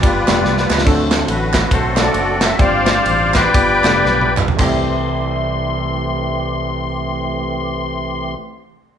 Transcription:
0.02 fingered electric bass G1, grand piano G2 G3 B3 D4 F4 G4, tonewheel organ F3 G3 B3 D4 G4, accordion F4 B4 D5, kick, ride
0.27 fingered electric bass F1, grand piano G3 B3 D4 F4 G4, snare, clap, ride
0.45 fingered electric bass C2, snare
0.58 snare
0.70 fingered electric bass C#2, snare, clap
0.78 snare
0.85 fingered electric bass D2, grand piano D3 A3 C4 D4 F#4 A4, tonewheel organ F#3 A3 C4 D4 A4, kick, crash
1.11 snare, clap, ride
1.28 fingered electric bass A1, accordion F#4 B4, ride
1.53 kick, snare, clap, ride
1.71 fingered electric bass B1, accordion F#4 A4 C5, kick, ride
1.96 grand piano A3 C4 D4 F#4 A4, accordion F#4 A4 D5, snare, clap, ride
2.14 fingered electric bass F#1, ride
2.41 accordion E5, snare, clap, ride
2.59 fingered electric bass G1, grand piano G2 G3 C4 D4 F4 G4, tonewheel organ F3 G3 C4 D4 G4, accordion C5 D5 F5, kick, ride
2.86 snare, clap, ride
3.06 fingered electric bass A1, ride
3.34 accordion B4 D5 G5, kick, snare, clap, ride
3.54 fingered electric bass G1, grand piano G2 G3 B3 D4 F4 G4, tonewheel organ F3 G3 B3 D4 G4, kick, ride
3.84 fingered electric bass F1, grand piano G3 B3 D4 F4 A4, snare, clap, ride
4.05 fingered electric bass B1, snare
4.21 high tom
4.37 clap, mid tom
4.48 floor tom
4.57 fingered electric bass C2, grand piano C2 A3 C4 E4, tonewheel organ E3 A3 C4 G4, accordion C6, kick, clap, crash
4.61 grand piano G4

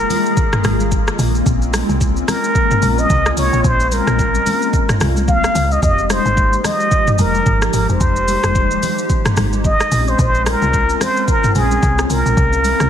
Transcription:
Already playing: analog synth pad D#3 G#3 A#3 F4 G#4, muted trumpet A#4
0.10 open hi-hat, high conga, low conga, shaker
0.26 shaker
0.37 kick, low conga, shaker
0.53 cross-stick, mid tom, shaker
0.64 log drum bass G#1, cross-stick, open hi-hat, high conga, shaker
0.80 high conga, shaker
0.91 kick, low conga, shaker
1.07 cross-stick, shaker
1.19 log drum bass A#1, analog synth pad C4 C#4 F4, open hi-hat, shaker
1.35 shaker
1.46 log drum bass A#1, kick, shaker
1.62 shaker
1.73 cross-stick, open hi-hat, high conga, shaker
1.89 log drum bass C2, high conga, shaker
2.01 kick, shaker
2.17 shaker
2.28 muted trumpet A#4, cross-stick, open hi-hat, high conga, low conga, shaker
2.44 shaker
2.55 kick, low conga, shaker
2.71 mid tom, shaker
2.82 log drum bass A#1, open hi-hat, high conga, shaker
2.98 muted trumpet D#5, high conga, shaker
3.10 log drum bass C2, kick, low conga, shaker
3.26 cross-stick, shaker
3.37 log drum bass C2, muted trumpet C#5, open hi-hat, shaker
3.53 log drum bass A#1, shaker
3.64 log drum bass A#1, muted trumpet C5, kick, shaker
3.80 shaker
3.92 muted trumpet A#4, open hi-hat, high conga, shaker
4.07 log drum bass A#1, cross-stick, high conga, shaker
4.19 kick, shaker
4.34 high conga, shaker
4.46 open hi-hat, high conga, low conga, shaker
4.62 shaker
4.73 kick, low conga, shaker
4.89 cross-stick, mid tom, shaker
5.00 log drum bass C2, cross-stick, open hi-hat, high conga, shaker
5.17 high conga, shaker
5.28 muted trumpet F5, kick, low conga, shaker
5.44 cross-stick, shaker
5.55 log drum bass C#2, open hi-hat, high conga, shaker
5.71 muted trumpet D#5, shaker
5.82 log drum bass F1, analog synth pad F3 D#4 G4, muted trumpet D#5, kick, shaker
5.98 shaker
6.10 muted trumpet C5, cross-stick, open hi-hat, high conga, shaker
6.25 log drum bass G#1, high conga, shaker
6.37 kick, shaker
6.53 shaker
6.64 muted trumpet D#5, cross-stick, open hi-hat, high conga, low conga, shaker
6.80 shaker
6.91 kick, low conga, shaker
7.07 mid tom, shaker
7.18 log drum bass F1, muted trumpet A#4, open hi-hat, high conga, shaker
7.35 high conga, shaker
7.46 log drum bass G#1, kick, low conga, shaker
7.62 cross-stick, shaker
7.73 log drum bass G#1, muted trumpet A#4, open hi-hat, shaker
7.89 log drum bass F1, muted trumpet C5, shaker
8.01 log drum bass F1, kick, shaker
8.16 shaker
8.28 open hi-hat, high conga, shaker
8.43 log drum bass F1, cross-stick, high conga, shaker
8.55 kick, shaker
8.71 shaker
8.83 open hi-hat, high conga, low conga, shaker
8.98 shaker
9.09 kick, low conga, shaker
9.25 cross-stick, mid tom, shaker
9.37 log drum bass G#1, cross-stick, open hi-hat, high conga, shaker
9.53 high conga, shaker
9.64 muted trumpet D#5, kick, low conga, shaker
9.80 cross-stick, shaker
9.92 log drum bass A#1, analog synth pad C4 C#4 F4, open hi-hat, shaker
10.08 muted trumpet C5, shaker
10.19 log drum bass A#1, muted trumpet C5, kick, shaker
10.35 shaker
10.46 muted trumpet A#4, cross-stick, open hi-hat, high conga, shaker
10.62 log drum bass C2, high conga, shaker
10.73 kick, shaker
10.89 shaker
11.01 muted trumpet C5, cross-stick, open hi-hat, high conga, low conga, shaker
11.17 shaker
11.28 muted trumpet A#4, kick, low conga, shaker
11.44 mid tom, shaker
11.55 log drum bass A#1, muted trumpet G#4, open hi-hat, high conga, shaker
11.71 high conga, shaker
11.82 log drum bass C2, kick, low conga, shaker
11.99 cross-stick, shaker
12.10 log drum bass C2, muted trumpet A#4, open hi-hat, shaker
12.26 log drum bass A#1, shaker
12.37 log drum bass C2, analog synth pad G#3 A#3 E4, kick, shaker
12.53 shaker
12.64 open hi-hat, high conga, shaker
12.80 log drum bass C2, cross-stick, high conga, shaker

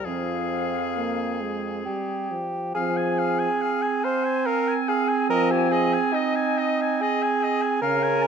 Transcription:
0.04 bassoon F2, french horn F3, clarinet C4, oboe G#4, flute F5
0.96 french horn A#3
1.41 french horn G#3
1.85 french horn G3, bassoon G4
2.31 french horn F3
2.74 french horn F3, clarinet C4, bassoon G#4, oboe F5, flute G#5
2.97 oboe G#5
3.19 oboe F5
3.39 oboe G#5
3.62 oboe F5
3.82 oboe G#5
4.04 bassoon C5, oboe F5
4.25 oboe G#5
4.46 bassoon A#4, oboe F5
4.68 oboe G#5
4.88 bassoon G#4, oboe F5
5.09 oboe G#5
5.30 french horn F3, bassoon A#4, oboe D#5
5.51 bassoon G4, oboe G#5
5.71 bassoon G#4, oboe D#5
5.94 oboe G#5
6.13 bassoon D#4, oboe D#5
6.36 oboe G#5
6.59 oboe D#5
6.81 oboe G#5
7.01 bassoon G#4, oboe D#5
7.23 oboe G#5
7.43 oboe D#5
7.62 oboe G#5
7.82 french horn C#3, clarinet C#4, bassoon A#4, oboe F5, flute G#5
8.03 oboe G#5
8.22 oboe A#5

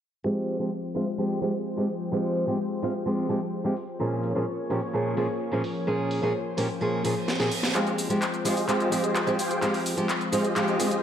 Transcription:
0.24 steel-string acoustic guitar F3 G#3 C4 G4, analog synth pad F3 G#3 C4 G4 C5
0.48 open hi-hat
0.59 steel-string acoustic guitar F3 G#3 C4 G4
0.95 steel-string acoustic guitar F3 G#3 C4 F4, open hi-hat
1.18 steel-string acoustic guitar F3 G#3 C4 G4
1.42 steel-string acoustic guitar F3 G#3 C4 G4, open hi-hat
1.77 steel-string acoustic guitar F3 G#3 C4 G4
1.89 open hi-hat
2.12 steel-string acoustic guitar F3 G#3 C4 G4
2.36 open hi-hat
2.47 steel-string acoustic guitar F3 G#3 C4 G4
2.82 steel-string acoustic guitar F3 G#3 C4 F4, open hi-hat
3.06 steel-string acoustic guitar F3 G#3 C4 G4
3.29 steel-string acoustic guitar F3 G#3 C4 G4, open hi-hat
3.64 steel-string acoustic guitar F3 G#3 C4 G4
3.77 open hi-hat
3.99 steel-string acoustic guitar A#2 F3 A#3 C#4 G#4, analog synth pad F3 A#3 C#4 G#4 C#5
4.23 open hi-hat
4.35 steel-string acoustic guitar A#2 F3 A#3 C#4 G#4
4.70 steel-string acoustic guitar A#2 F3 A#3 C#4 G4, open hi-hat
4.93 steel-string acoustic guitar A#2 F3 A#3 C#4 G#4
5.17 steel-string acoustic guitar A#2 F3 A#3 C#4 G#4, open hi-hat
5.52 steel-string acoustic guitar A#2 F3 A#3 C#4 G#4
5.64 open hi-hat
5.87 steel-string acoustic guitar A#2 F3 A#3 C#4 G#4, analog synth pad C5
6.11 open hi-hat
6.22 steel-string acoustic guitar A#2 F3 A#3 C#4 G#4
6.57 steel-string acoustic guitar A#2 F3 A#3 C#4 G4, open hi-hat
6.81 steel-string acoustic guitar A#2 F3 A#3 C#4 G#4, reverse cymbal
7.04 steel-string acoustic guitar A#2 F3 A#3 C#4 G#4, open hi-hat
7.28 snare
7.39 steel-string acoustic guitar A#2 F3 A#3 C#4 G#4, snare
7.51 open hi-hat
7.63 snare
7.74 steel-string acoustic guitar F3 G#3 C4 G4, analog synth pad F3 G#3 C4 C5 G5, supersaw synth F4 G4 G#4 C5 F5, clap, closed hi-hat, riser, shaker
7.87 closed hi-hat, shaker
7.98 open hi-hat, shaker
8.09 steel-string acoustic guitar F3 G#3 C4 G4, closed hi-hat, shaker
8.22 clap, closed hi-hat, shaker
8.34 closed hi-hat, shaker
8.45 steel-string acoustic guitar F3 G#3 C4 F4, supersaw synth F4 G4 G#4 C5 D#5, open hi-hat, shaker
8.57 open hi-hat, shaker
8.68 steel-string acoustic guitar F3 G#3 C4 G4, supersaw synth F4 G4 G#4 C5 F5, clap, closed hi-hat, shaker
8.80 supersaw synth F4 G4 G#4 C5 D#5, closed hi-hat, shaker
8.92 steel-string acoustic guitar F3 G#3 C4 G4, open hi-hat, shaker
9.04 closed hi-hat, shaker
9.16 clap, closed hi-hat, shaker
9.27 steel-string acoustic guitar F3 G#3 C4 G4, closed hi-hat, shaker
9.39 supersaw synth F4 G4 G#4 C5 G5, open hi-hat, shaker
9.51 closed hi-hat, shaker
9.62 steel-string acoustic guitar F3 G#3 C4 G4, supersaw synth F4 G4 G#4 C5 F5, analog synth pad F4, clap, closed hi-hat, shaker
9.74 open hi-hat, shaker
9.86 open hi-hat, shaker
9.97 steel-string acoustic guitar F3 G#3 C4 G4, closed hi-hat, shaker
10.09 clap, closed hi-hat, shaker
10.21 closed hi-hat, shaker
10.32 steel-string acoustic guitar F3 G#3 C4 F4, supersaw synth F4 G4 G#4 C5 D#5, open hi-hat, shaker
10.45 closed hi-hat, shaker
10.56 steel-string acoustic guitar F3 G#3 C4 G4, supersaw synth F4 G4 G#4 C5 F5, clap, closed hi-hat, shaker
10.68 supersaw synth F4 G4 G#4 C5 D#5, closed hi-hat, shaker
10.79 steel-string acoustic guitar F3 G#3 C4 G4, open hi-hat, shaker
10.91 closed hi-hat, shaker

